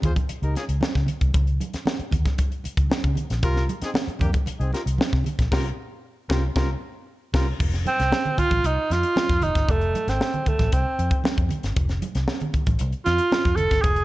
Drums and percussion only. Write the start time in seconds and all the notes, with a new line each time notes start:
0.02 kick, closed hi-hat, low conga
0.16 kick, closed hi-hat, high conga
0.29 closed hi-hat
0.43 closed hi-hat
0.55 snare, closed hi-hat, muted conga
0.69 closed hi-hat
0.81 snare, muted conga, high conga
0.95 kick, snare
1.06 closed hi-hat, muted conga, low conga
1.21 kick, closed hi-hat
1.34 kick, closed hi-hat, muted conga
1.47 closed hi-hat
1.60 closed hi-hat, muted conga, high conga
1.74 snare, closed hi-hat
1.85 snare, muted conga, high conga
2.00 closed hi-hat
2.11 kick, closed hi-hat, muted conga, low conga
2.25 kick, snare, closed hi-hat, high conga
2.38 kick, closed hi-hat, muted conga
2.52 closed hi-hat
2.64 closed hi-hat, muted conga
2.77 kick, closed hi-hat
2.90 snare, high conga
3.04 kick, closed hi-hat
3.15 closed hi-hat, muted conga, low conga
3.30 snare, closed hi-hat
3.43 kick, closed hi-hat, muted conga
3.56 snare
3.69 closed hi-hat, high conga
3.82 snare, closed hi-hat
3.94 snare, muted conga, high conga
4.08 closed hi-hat
4.19 kick, closed hi-hat, muted conga, low conga
4.33 kick, closed hi-hat, high conga
4.46 closed hi-hat, muted conga
4.61 closed hi-hat
4.73 snare, closed hi-hat, muted conga
4.87 closed hi-hat
4.98 snare, muted conga, high conga
5.13 kick, snare
5.24 closed hi-hat, muted conga, low conga
5.39 kick, snare, closed hi-hat
5.52 kick, snare, crash
6.30 kick, snare
6.56 kick, snare
7.34 kick, snare, crash
7.59 kick, crash, muted conga
7.73 snare, closed hi-hat
7.86 closed hi-hat, high conga
8.00 snare, closed hi-hat
8.12 snare, muted conga, high conga
8.25 closed hi-hat, low conga
8.37 kick, closed hi-hat, muted conga, low conga
8.51 kick, closed hi-hat, high conga
8.64 closed hi-hat, muted conga
8.90 snare, closed hi-hat, muted conga
9.03 closed hi-hat
9.16 snare, muted conga, high conga
9.29 kick, snare, closed hi-hat
9.41 closed hi-hat, low conga
9.55 kick, snare, closed hi-hat
9.69 kick, closed hi-hat, muted conga
9.81 closed hi-hat
9.95 closed hi-hat, muted conga, high conga
10.08 snare, closed hi-hat
10.20 snare, high conga
10.33 closed hi-hat, low conga
10.46 kick, closed hi-hat, low conga
10.59 kick, snare, closed hi-hat, high conga
10.72 kick, closed hi-hat, muted conga
10.99 closed hi-hat
11.11 kick, closed hi-hat
11.24 snare, muted conga, high conga
11.38 kick, closed hi-hat
11.49 closed hi-hat, muted conga, low conga
11.63 snare, closed hi-hat
11.76 kick, closed hi-hat
11.89 snare, closed hi-hat
12.02 closed hi-hat, muted conga, high conga
12.15 snare, closed hi-hat
12.27 snare, muted conga, high conga
12.40 closed hi-hat, low conga
12.53 kick, closed hi-hat, muted conga, low conga
12.66 kick, closed hi-hat, high conga
12.79 closed hi-hat, muted conga
12.92 closed hi-hat
13.06 snare, closed hi-hat, muted conga
13.18 closed hi-hat
13.32 snare, high conga
13.45 kick, snare, closed hi-hat
13.57 closed hi-hat, muted conga, low conga
13.71 kick, snare, closed hi-hat
13.84 kick, closed hi-hat, muted conga
13.96 closed hi-hat